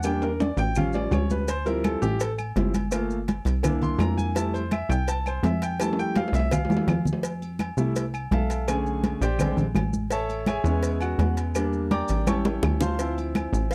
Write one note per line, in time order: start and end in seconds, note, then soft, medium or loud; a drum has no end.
0.00 0.52 E2 loud
0.00 maracas medium
0.04 0.28 G3 medium
0.04 0.29 A#3 medium
0.04 0.29 D4 medium
0.04 0.22 G5 loud
0.04 high conga soft
0.04 high timbale medium
0.04 low agogo loud
0.04 claves medium
0.22 0.40 A#4 medium
0.22 high conga soft
0.22 high timbale medium
0.22 maracas soft
0.40 0.58 D5 medium
0.40 high conga medium
0.40 high timbale medium
0.40 low agogo medium
0.40 maracas soft
0.57 1.08 A1 loud
0.57 0.76 G5 loud
0.57 low timbale medium
0.57 low agogo medium
0.57 maracas medium
0.75 1.45 F3 medium
0.75 1.45 G3 medium
0.75 1.45 C#4 medium
0.75 0.95 F5 medium
0.75 high conga soft
0.75 low conga medium
0.75 low agogo loud
0.75 claves medium
0.75 maracas medium
0.93 1.12 D5 medium
0.93 high conga soft
0.93 low timbale medium
0.93 low agogo medium
0.93 maracas soft
1.11 1.96 D2 medium
1.11 1.30 C#5 medium
1.11 high conga medium
1.11 low timbale loud
1.11 low agogo loud
1.11 claves medium
1.11 maracas soft
1.30 1.48 B4 medium
1.30 high conga medium
1.30 low timbale medium
1.30 maracas medium
1.48 1.66 C5 medium
1.48 cowbell loud
1.48 high conga soft
1.48 low agogo medium
1.48 maracas loud
1.66 2.17 F3 medium
1.66 2.17 G3 medium
1.66 2.18 C4 medium
1.66 2.18 E4 medium
1.66 1.84 A#4 medium
1.66 high conga soft
1.66 low agogo medium
1.66 maracas soft
1.84 2.02 A4 medium
1.84 cowbell medium
1.84 high conga loud
1.84 low timbale medium
1.84 low agogo loud
1.84 claves medium
1.84 maracas soft
2.02 2.53 A1 loud
2.02 2.20 G4 medium
2.02 high conga soft
2.02 low agogo medium
2.02 maracas medium
2.20 2.31 A4 medium
2.20 cowbell loud
2.20 high conga soft
2.20 low agogo medium
2.20 maracas medium
2.38 high conga soft
2.38 low agogo loud
2.38 claves medium
2.38 maracas soft
2.56 3.40 G1 medium
2.56 2.72 F3 soft
2.56 2.73 G3 soft
2.56 2.73 C4 soft
2.56 2.73 E4 medium
2.56 cowbell medium
2.56 high conga medium
2.56 low timbale medium
2.56 low agogo medium
2.56 maracas soft
2.74 cowbell medium
2.74 high conga medium
2.74 low agogo medium
2.74 maracas medium
2.91 3.16 A3 medium
2.91 3.16 A#3 medium
2.91 3.16 F4 medium
2.91 cowbell loud
2.91 high conga soft
2.91 low agogo loud
2.91 claves medium
2.91 maracas loud
3.10 high conga soft
3.10 maracas soft
3.28 cowbell medium
3.28 high conga medium
3.28 low timbale medium
3.28 low agogo medium
3.28 maracas soft
3.45 3.96 C2 loud
3.45 cowbell medium
3.45 low agogo medium
3.45 maracas medium
3.63 4.32 A#3 medium
3.63 4.32 D4 medium
3.63 4.32 E4 medium
3.63 cowbell loud
3.63 high conga soft
3.63 low conga medium
3.63 low agogo loud
3.63 claves medium
3.63 maracas medium
3.82 4.00 C6 loud
3.82 high conga soft
3.82 low conga medium
3.82 low agogo medium
3.82 maracas soft
3.99 4.83 F2 loud
3.99 4.18 A#5 medium
3.99 cowbell medium
3.99 high conga medium
3.99 low timbale medium
3.99 low agogo loud
3.99 claves medium
3.99 maracas soft
4.18 4.35 G#5 loud
4.18 high conga medium
4.18 maracas medium
4.35 4.60 G3 medium
4.35 4.60 A3 medium
4.35 4.60 E4 medium
4.35 4.54 A5 loud
4.35 cowbell loud
4.35 high conga soft
4.35 low agogo medium
4.35 maracas medium
4.54 4.71 C5 medium
4.54 high conga soft
4.54 low agogo medium
4.54 maracas soft
4.71 4.90 E5 medium
4.71 cowbell medium
4.71 high conga loud
4.71 low timbale medium
4.71 low agogo loud
4.71 claves medium
4.71 maracas soft
4.89 5.40 C2 loud
4.89 5.07 G5 loud
4.89 high conga soft
4.89 low agogo medium
4.89 maracas medium
5.07 5.26 A5 loud
5.07 cowbell loud
5.07 high conga soft
5.07 low agogo medium
5.07 maracas medium
5.26 5.44 C5 medium
5.26 high conga soft
5.26 low agogo loud
5.26 claves medium
5.26 maracas soft
5.43 6.28 F2 medium
5.43 5.62 E5 medium
5.43 cowbell medium
5.43 high conga medium
5.43 low timbale medium
5.43 low agogo medium
5.43 maracas soft
5.62 5.80 G5 medium
5.62 cowbell medium
5.62 low agogo medium
5.62 maracas medium
5.80 6.31 G3 medium
5.80 6.32 A3 medium
5.80 6.32 E4 medium
5.80 5.98 A5 loud
5.80 cowbell loud
5.80 high conga soft
5.80 high timbale medium
5.80 low agogo loud
5.80 claves medium
5.80 maracas medium
5.93 high timbale medium
5.99 6.16 G5 loud
5.99 high conga soft
5.99 maracas soft
6.15 6.34 F5 medium
6.15 cowbell medium
6.15 high conga loud
6.15 low timbale loud
6.15 low agogo medium
6.15 maracas soft
6.28 low timbale medium
6.33 6.67 C2 loud
6.33 6.52 E5 loud
6.33 cowbell medium
6.33 low agogo medium
6.33 maracas medium
6.39 low timbale medium
6.51 7.02 F5 medium
6.51 cowbell loud
6.51 high conga soft
6.51 low conga medium
6.51 low timbale medium
6.51 low agogo loud
6.51 claves medium
6.51 maracas medium
6.65 low timbale medium
6.69 6.86 E2 medium
6.69 6.86 G3 soft
6.69 6.86 A3 soft
6.69 6.87 E4 medium
6.69 high conga loud
6.69 low agogo medium
6.69 maracas soft
6.77 low timbale medium
6.87 7.72 F2 loud
6.87 cowbell medium
6.87 low conga loud
6.87 low timbale loud
6.87 low agogo loud
6.87 claves medium
6.87 maracas soft
7.05 low conga loud
7.05 maracas medium
7.13 low timbale medium
7.23 cowbell loud
7.23 high conga soft
7.23 low agogo medium
7.23 maracas medium
7.42 high conga soft
7.42 low agogo medium
7.42 maracas soft
7.59 cowbell medium
7.59 high conga medium
7.59 low timbale medium
7.59 low agogo loud
7.59 claves medium
7.59 maracas soft
7.77 8.28 C2 medium
7.77 8.02 G3 medium
7.77 8.02 A3 medium
7.77 8.02 E4 medium
7.77 high conga soft
7.77 low agogo medium
7.77 maracas medium
7.96 cowbell loud
7.96 high conga soft
7.96 low agogo medium
7.96 maracas medium
8.14 high conga soft
8.14 low agogo loud
8.14 claves medium
8.14 maracas soft
8.31 9.16 B1 loud
8.31 8.66 A4 medium
8.31 8.66 E5 medium
8.31 8.66 F5 medium
8.31 8.66 A5 medium
8.31 cowbell medium
8.31 high conga medium
8.31 low timbale medium
8.31 low agogo medium
8.31 maracas soft
8.50 cowbell medium
8.50 low agogo medium
8.50 maracas medium
8.68 9.19 D3 medium
8.68 9.19 A3 soft
8.68 9.20 C#4 medium
8.68 9.19 G#4 medium
8.68 9.18 G#5 medium
8.68 cowbell loud
8.68 high conga soft
8.68 low agogo loud
8.68 claves medium
8.68 maracas medium
8.86 high conga soft
8.86 maracas soft
9.04 cowbell medium
9.04 high conga medium
9.04 low timbale medium
9.04 low agogo medium
9.04 maracas soft
9.21 9.55 A#1 loud
9.21 9.55 G4 medium
9.21 9.56 C5 medium
9.21 9.56 D5 medium
9.21 9.55 G5 medium
9.21 cowbell medium
9.21 low agogo medium
9.21 maracas medium
9.38 9.63 D3 medium
9.38 9.63 G3 medium
9.38 9.63 G#3 medium
9.38 9.64 C4 medium
9.38 cowbell loud
9.38 high conga soft
9.38 low conga medium
9.38 low agogo loud
9.38 claves medium
9.38 maracas medium
9.57 9.74 A#1 medium
9.57 high conga soft
9.57 low conga medium
9.57 low agogo medium
9.57 maracas soft
9.75 10.59 A1 loud
9.75 cowbell medium
9.75 high conga medium
9.75 low timbale medium
9.75 low agogo loud
9.75 claves medium
9.75 maracas soft
9.93 high conga medium
9.93 maracas medium
10.11 10.45 A4 medium
10.11 10.45 C#5 medium
10.11 10.45 E5 medium
10.11 10.45 A5 medium
10.11 cowbell loud
10.11 high conga soft
10.11 low agogo medium
10.11 maracas medium
10.29 high conga soft
10.29 low agogo medium
10.29 maracas soft
10.46 10.98 G#4 medium
10.46 10.98 C#5 medium
10.46 10.98 E5 medium
10.46 10.98 G#5 medium
10.46 cowbell medium
10.46 high conga loud
10.46 low timbale medium
10.46 low agogo loud
10.46 claves medium
10.46 maracas soft
10.64 11.15 E2 loud
10.64 11.51 G#3 medium
10.64 11.51 B3 medium
10.64 11.52 C#4 medium
10.64 high conga soft
10.64 low agogo medium
10.64 maracas medium
10.83 cowbell loud
10.83 high conga soft
10.83 low agogo medium
10.83 maracas medium
11.01 11.35 F#4 medium
11.01 11.35 F#5 medium
11.01 high conga soft
11.01 low agogo loud
11.01 claves medium
11.01 maracas soft
11.18 12.03 E2 loud
11.18 cowbell medium
11.18 high conga medium
11.18 low timbale medium
11.18 low agogo medium
11.18 maracas soft
11.37 cowbell medium
11.37 low agogo medium
11.37 maracas medium
11.55 12.24 G3 medium
11.55 12.24 A#3 medium
11.55 12.24 D4 medium
11.55 cowbell loud
11.55 high conga soft
11.55 low agogo loud
11.55 claves medium
11.55 maracas loud
11.73 high conga soft
11.73 maracas soft
11.91 12.25 D5 medium
11.91 12.25 G5 medium
11.91 12.25 A#5 medium
11.91 12.25 D6 loud
11.91 cowbell medium
11.91 high conga loud
11.91 low timbale medium
11.91 low agogo medium
11.91 maracas soft
12.08 12.60 A1 loud
12.08 cowbell medium
12.08 low agogo medium
12.08 maracas medium
12.27 12.95 G3 medium
12.27 12.96 C#4 medium
12.27 12.96 E4 medium
12.27 12.78 C#5 medium
12.27 12.78 G5 medium
12.27 12.78 A5 medium
12.27 12.78 C#6 medium
12.27 cowbell loud
12.27 high conga medium
12.27 low agogo loud
12.27 claves medium
12.27 maracas medium
12.45 high bongo loud
12.45 high conga medium
12.45 high timbale medium
12.45 low agogo medium
12.45 maracas soft
12.63 13.47 D2 medium
12.63 cowbell medium
12.63 high bongo medium
12.63 low conga medium
12.63 low timbale medium
12.63 low agogo loud
12.63 claves medium
12.63 maracas soft
12.81 13.15 C5 medium
12.81 13.15 F5 medium
12.81 13.15 A5 medium
12.81 13.15 C6 medium
12.81 low bongo loud
12.81 low conga medium
12.81 low timbale medium
12.81 maracas medium
12.99 13.75 F3 medium
12.99 13.75 C4 soft
12.99 13.75 E4 medium
12.99 cowbell loud
12.99 high conga soft
12.99 low agogo medium
12.99 maracas medium
13.18 high conga soft
13.18 low agogo medium
13.18 maracas soft
13.35 cowbell medium
13.35 high conga loud
13.35 low timbale medium
13.35 low agogo loud
13.35 claves medium
13.35 maracas soft
13.53 13.75 A1 loud
13.53 high conga soft
13.53 low agogo medium
13.53 maracas medium
13.71 13.75 F5 medium
13.71 cowbell loud
13.71 high conga soft